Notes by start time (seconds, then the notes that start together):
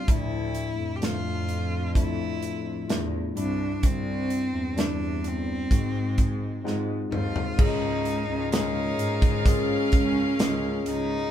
Already playing: G3 C4 D4 E4 F4 G4
0.07 D2 A2 F3 A3 D4 E4, kick, closed hi-hat
0.55 closed hi-hat
0.78 F2
0.96 G4
1.01 F3 A3 D4 F4, snare, closed hi-hat
1.49 closed hi-hat
1.95 F3 A3 D4 E4, kick, closed hi-hat
2.42 closed hi-hat
2.88 E2 A3 D4 E4 F4, snare, closed hi-hat
3.35 C2 G2 G3 C4 D4 E4, closed hi-hat
3.83 C2 C4, kick, closed hi-hat
4.30 closed hi-hat
4.53 E2
4.76 G3 C4 D4 E4, snare, closed hi-hat
5.24 C4, closed hi-hat
5.71 G#2 D#3 G#3 C4 D#4 F#4, kick, closed hi-hat
6.18 kick, closed hi-hat
6.64 G#2 G#3 C4 D#4 F4 F#5, snare
6.88 D#5
7.12 D#2 F4 C5, mid tom
7.36 floor tom
7.58 C#2 G#2 G#3 A#3 C#4 D#4 F4 G#4 A#4 F5, kick, crash
8.05 closed hi-hat
8.29 C#2
8.51 G#3 A#3 C#4 D#4 F4 G#4, snare, closed hi-hat
8.99 G#2, closed hi-hat
9.22 kick, closed hi-hat
9.46 G#3 A#3 C#4 F4 G#4, kick, closed hi-hat
9.92 C#2, kick, closed hi-hat
10.39 C#2 G#3 A#3 C#4 F4 G#4, snare, closed hi-hat
10.86 C#2 D#4, closed hi-hat